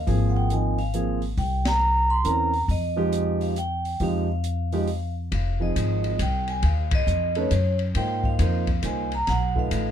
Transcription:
0.00 0.30 F5 medium
0.07 1.34 G#1 medium
0.07 0.49 F3 medium
0.07 0.49 A#3 medium
0.07 0.50 C4 medium
0.07 0.50 G#4 medium
0.07 kick soft
0.07 open hi-hat soft
0.29 0.36 F#5 medium
0.37 0.43 G5 medium
0.50 0.76 F3 medium
0.50 0.77 A#3 soft
0.50 0.77 C4 soft
0.50 0.77 D#4 medium
0.50 0.81 G#5 medium
0.50 closed hi-hat medium
0.78 1.19 F5 medium
0.78 open hi-hat soft
0.94 1.20 F3 medium
0.94 1.20 A#3 medium
0.94 1.20 C4 medium
0.94 1.20 G#4 medium
0.94 closed hi-hat soft
1.22 open hi-hat soft
1.37 2.21 C2 medium
1.37 1.67 G5 medium
1.37 kick soft
1.37 open hi-hat soft
1.65 2.12 A#5 loud
1.65 snare medium
1.65 ride medium
2.10 2.26 C6 loud
2.24 2.66 E2 medium
2.24 2.50 E3 medium
2.24 2.51 C4 medium
2.24 2.51 C#4 medium
2.24 2.51 A#4 medium
2.24 2.59 A#5 medium
2.24 closed hi-hat medium
2.53 open hi-hat soft
2.68 3.96 F2 medium
2.68 3.44 D#5 medium
2.68 kick soft
2.68 open hi-hat soft
2.96 3.53 F3 medium
2.96 3.53 G#3 medium
2.96 3.53 D#4 medium
2.96 3.53 G4 medium
3.12 closed hi-hat medium
3.41 3.57 F5 medium
3.41 open hi-hat soft
3.56 4.02 G5 medium
3.56 closed hi-hat medium
3.85 open hi-hat soft
4.00 5.27 F2 medium
4.00 4.26 F3 medium
4.00 4.26 G#3 medium
4.00 4.26 D#4 medium
4.00 4.26 G4 medium
4.00 5.13 F5 medium
4.00 kick soft
4.00 open hi-hat soft
4.44 closed hi-hat medium
4.72 4.86 F3 medium
4.72 4.87 G#3 medium
4.72 4.87 D#4 medium
4.72 4.87 G4 medium
4.72 open hi-hat soft
4.87 open hi-hat soft
5.32 5.74 F1 medium
5.32 5.62 F5 medium
5.32 kick soft
5.32 ride medium
5.60 6.16 F3 medium
5.60 6.17 C4 soft
5.60 6.17 D#4 soft
5.60 6.17 G#4 medium
5.60 6.16 D#5 medium
5.76 6.18 G#1 medium
5.76 kick soft
5.76 hi-hat pedal soft
5.76 ride medium
6.04 ride soft
6.19 6.62 C2 medium
6.19 6.47 G5 medium
6.19 kick soft
6.19 hi-hat pedal soft
6.19 ride medium
6.48 6.63 G#5 medium
6.48 ride soft
6.63 7.06 D#2 medium
6.63 6.91 F5 medium
6.63 kick soft
6.63 ride medium
6.91 7.34 D#5 medium
6.91 kick medium
6.91 ride medium
7.07 7.50 F2 medium
7.07 hi-hat pedal medium
7.35 7.50 A3 medium
7.35 7.50 C#4 medium
7.35 7.50 D#4 medium
7.35 7.50 B4 medium
7.35 7.78 C#5 medium
7.35 ride soft
7.51 7.94 F#2 medium
7.51 kick soft
7.51 hi-hat pedal medium
7.51 ride medium
7.79 ride soft
7.95 8.38 G#2 medium
7.95 8.38 A#3 medium
7.95 8.38 D#4 soft
7.95 8.38 F4 soft
7.95 8.38 C5 medium
7.95 8.25 G5 medium
7.95 kick soft
7.95 ride medium
8.24 8.80 F5 medium
8.24 kick medium
8.39 8.82 F2 medium
8.39 8.65 A#3 medium
8.39 8.65 D#4 medium
8.39 8.65 F4 medium
8.39 8.66 C5 medium
8.39 kick soft
8.39 hi-hat pedal soft
8.39 ride medium
8.67 kick medium
8.67 ride soft
8.82 9.26 C2 medium
8.82 9.08 A#3 medium
8.82 9.09 D#4 medium
8.82 9.09 F4 soft
8.82 9.09 C5 medium
8.82 9.11 G#5 medium
8.82 kick soft
8.82 hi-hat pedal medium
8.82 ride medium
9.12 9.28 A#5 medium
9.12 ride soft
9.27 9.70 B1 medium
9.27 9.58 F#5 medium
9.27 kick soft
9.27 snare soft
9.27 ride medium
9.56 9.91 A3 medium
9.56 9.91 D#4 medium
9.56 9.91 F4 medium
9.56 9.91 B4 medium
9.56 9.72 F5 medium
9.56 kick soft
9.71 9.91 A1 medium
9.71 9.91 F5 medium
9.71 kick soft
9.71 hi-hat pedal medium
9.71 ride medium

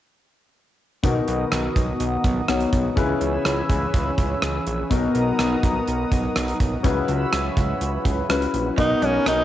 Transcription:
1.03 1.21 B1 loud
1.03 1.72 B2 medium
1.03 2.93 D#3 medium
1.03 2.46 B3 medium
1.03 2.93 B3 medium
1.03 2.95 B3 medium
1.03 2.46 D#4 medium
1.03 2.93 F#4 medium
1.03 2.46 F#4 medium
1.03 2.47 A#4 medium
1.03 2.95 F#5 medium
1.03 2.95 A#5 medium
1.03 2.95 D#6 medium
1.03 kick medium
1.03 closed hi-hat medium
1.28 1.45 B1 medium
1.28 closed hi-hat medium
1.52 1.69 B1 loud
1.52 cross-stick medium
1.52 closed hi-hat medium
1.76 1.94 B1 medium
1.76 kick medium
1.76 closed hi-hat medium
2.00 2.18 B1 medium
2.00 closed hi-hat medium
2.24 2.42 B1 medium
2.24 kick medium
2.24 closed hi-hat medium
2.48 2.66 B1 medium
2.48 2.97 B3 soft
2.48 2.97 D#4 soft
2.48 2.97 F#4 soft
2.48 2.97 C#5 medium
2.48 cross-stick loud
2.48 closed hi-hat medium
2.60 closed hi-hat soft
2.73 2.90 B1 medium
2.73 kick medium
2.73 closed hi-hat medium
2.96 3.15 C#2 loud
2.96 3.66 C#3 medium
2.96 4.87 E3 medium
2.96 4.86 C#4 medium
2.96 4.87 C#4 medium
2.96 4.87 E4 medium
2.96 4.87 G#4 medium
2.96 4.87 B4 medium
2.96 4.89 C#5 medium
2.96 4.89 G#5 medium
2.96 4.89 B5 medium
2.96 4.89 E6 medium
2.96 kick medium
2.96 closed hi-hat medium
3.21 3.38 C#2 medium
3.21 closed hi-hat medium
3.45 3.63 C#2 loud
3.45 cross-stick loud
3.45 closed hi-hat medium
3.70 3.87 C#2 medium
3.70 kick medium
3.70 closed hi-hat medium
3.94 4.11 C#2 medium
3.94 kick medium
3.94 closed hi-hat medium
4.18 4.36 C#2 medium
4.18 kick medium
4.18 closed hi-hat medium
4.42 4.60 C#2 medium
4.42 cross-stick loud
4.42 closed hi-hat medium
4.67 4.84 A#1 medium
4.67 closed hi-hat medium
4.90 5.08 B1 loud
4.90 5.60 B2 medium
4.90 6.81 F#3 medium
4.90 6.80 B3 medium
4.90 6.82 B3 medium
4.90 6.80 D#4 medium
4.90 6.81 F#4 medium
4.90 6.81 A#4 medium
4.90 8.74 F#5 medium
4.90 6.82 A#5 medium
4.90 6.83 D#6 medium
4.90 kick medium
4.90 closed hi-hat medium
5.15 5.33 B1 medium
5.15 closed hi-hat medium
5.39 5.56 B1 loud
5.39 cross-stick loud
5.39 closed hi-hat medium
5.63 5.81 B1 medium
5.63 kick medium
5.63 closed hi-hat medium
5.87 6.05 B1 medium
5.87 closed hi-hat medium
6.12 6.29 B1 medium
6.12 kick medium
6.12 closed hi-hat medium
6.36 6.54 B1 loud
6.36 cross-stick loud
6.36 closed hi-hat medium
6.48 closed hi-hat medium
6.60 6.77 B1 medium
6.60 kick medium
6.60 closed hi-hat medium
6.83 7.02 C#2 loud
6.83 7.53 C#3 medium
6.83 8.74 F#3 medium
6.83 8.26 C#4 medium
6.83 8.26 E4 medium
6.83 8.74 E4 medium
6.83 8.27 F#4 medium
6.83 8.74 B4 medium
6.83 8.27 B4 medium
6.83 8.76 C#5 medium
6.83 8.76 B5 medium
6.83 8.76 E6 medium
6.83 kick medium
6.83 closed hi-hat medium
7.08 7.26 C#2 loud
7.08 closed hi-hat medium
7.33 7.50 C#2 medium
7.33 cross-stick loud
7.33 closed hi-hat medium
7.57 7.74 C#2 medium
7.57 kick medium
7.57 closed hi-hat medium
7.81 7.99 C#2 medium
7.81 closed hi-hat medium
8.05 8.23 C#2 medium
8.05 kick medium
8.05 closed hi-hat medium
8.29 8.47 C#2 medium
8.29 8.78 C#4 soft
8.29 8.78 E4 soft
8.29 8.76 F#4 soft
8.29 8.78 B4 medium
8.29 cross-stick loud
8.29 closed hi-hat medium
8.42 closed hi-hat soft
8.54 8.71 A#1 medium
8.54 closed hi-hat medium
8.77 8.95 B1 loud
8.77 9.44 B2 medium
8.77 8.87 F#3 medium
8.77 8.97 B3 medium
8.77 8.98 D#4 medium
8.77 9.06 D#4 medium
8.77 8.98 F#4 medium
8.77 8.98 A#4 medium
8.77 kick medium
8.77 closed hi-hat medium
9.02 9.20 B1 medium
9.02 9.11 G#3 medium
9.02 9.22 B3 medium
9.02 9.27 C#4 medium
9.02 9.22 D#4 medium
9.02 9.22 F#4 medium
9.02 9.22 A#4 medium
9.02 closed hi-hat medium
9.14 muted clean electric guitar stroke soft
9.26 9.44 B1 loud
9.26 9.44 B3 medium
9.26 9.44 D#4 medium
9.26 9.44 F#4 medium
9.26 9.44 A#4 medium
9.26 cross-stick loud
9.26 closed hi-hat medium

